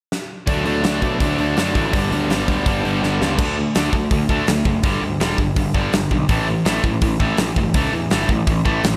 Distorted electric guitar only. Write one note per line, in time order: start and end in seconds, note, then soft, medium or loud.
0.48 0.64 D3 medium
0.48 0.64 A3 medium
0.48 0.66 D4 medium
0.65 0.83 D3 medium
0.65 0.84 A3 medium
0.65 0.85 D4 medium
0.84 1.01 D3 medium
0.84 1.02 A3 medium
0.84 1.03 D4 medium
1.03 1.19 D3 medium
1.03 1.19 A3 medium
1.03 1.21 D4 medium
1.20 1.38 D3 medium
1.20 1.39 A3 medium
1.20 1.40 D4 loud
1.39 1.56 D3 medium
1.39 1.56 A3 medium
1.39 1.58 D4 medium
1.57 1.74 D3 medium
1.57 1.74 A3 medium
1.57 1.76 D4 medium
1.75 1.92 D3 medium
1.75 1.93 A3 medium
1.75 3.39 D4 medium
1.94 2.11 G2 medium
1.94 2.11 D3 loud
1.94 2.11 G3 loud
2.12 2.29 G2 medium
2.12 2.30 D3 medium
2.12 2.30 G3 medium
2.30 2.47 G2 medium
2.30 2.48 D3 medium
2.30 2.48 G3 medium
2.48 2.66 G2 medium
2.48 2.66 D3 medium
2.48 2.66 G3 medium
2.67 2.83 G2 medium
2.67 2.83 D3 medium
2.67 2.84 G3 loud
2.84 3.00 G2 medium
2.84 3.01 D3 medium
2.84 3.02 G3 medium
3.02 3.20 G2 medium
3.02 3.20 D3 medium
3.02 3.21 G3 medium
3.21 3.38 G2 medium
3.21 3.37 D3 medium
3.21 3.38 G3 medium
3.39 3.55 D3 medium
3.39 3.56 A3 medium
3.39 3.56 D4 medium
3.56 3.73 D3 medium
3.56 3.73 A3 medium
3.76 3.92 D3 medium
3.76 3.93 A3 medium
3.76 3.93 D4 loud
3.93 4.10 D3 medium
3.93 4.10 A3 medium
4.12 4.28 D3 medium
4.12 4.28 A3 medium
4.30 4.47 D3 medium
4.30 4.47 A3 medium
4.30 4.47 D4 medium
4.48 4.64 D3 medium
4.48 4.64 A3 medium
4.66 4.82 D3 medium
4.66 4.83 A3 medium
4.84 5.01 G2 medium
4.84 5.01 D3 medium
4.84 5.02 G3 medium
5.02 5.19 G2 medium
5.02 5.19 D3 medium
5.20 5.37 G2 medium
5.20 5.38 D3 medium
5.20 5.38 G3 loud
5.38 5.55 G2 medium
5.38 5.55 D3 medium
5.57 5.73 G2 medium
5.57 5.73 D3 medium
5.74 5.92 G2 medium
5.74 5.92 D3 medium
5.74 5.92 G3 loud
5.93 6.10 G2 medium
5.93 6.10 D3 medium
6.12 6.28 G2 medium
6.12 6.28 D3 medium
6.29 6.46 A2 medium
6.29 6.47 E3 medium
6.29 6.47 A3 medium
6.48 6.64 A2 medium
6.48 6.64 E3 medium
6.65 6.83 A2 medium
6.65 6.83 E3 medium
6.65 6.83 A3 loud
6.84 7.01 A2 medium
6.84 7.01 E3 medium
7.02 7.19 A2 medium
7.02 7.19 E3 medium
7.20 7.37 A2 medium
7.20 7.38 E3 medium
7.20 7.38 A3 medium
7.39 7.55 A2 medium
7.39 7.56 E3 medium
7.58 7.74 A2 medium
7.58 7.74 E3 medium
7.75 7.92 A2 medium
7.75 7.93 E3 medium
7.75 7.93 A3 loud
7.93 8.10 A2 medium
7.93 8.10 E3 medium
8.11 8.28 A2 medium
8.11 8.29 E3 medium
8.11 8.29 A3 medium
8.30 8.46 A2 medium
8.30 8.46 E3 medium
8.47 8.64 A2 medium
8.47 8.64 E3 medium
8.65 8.82 A2 medium
8.65 8.83 E3 medium
8.65 8.83 A3 loud
8.84 8.97 A2 medium
8.84 8.97 E3 medium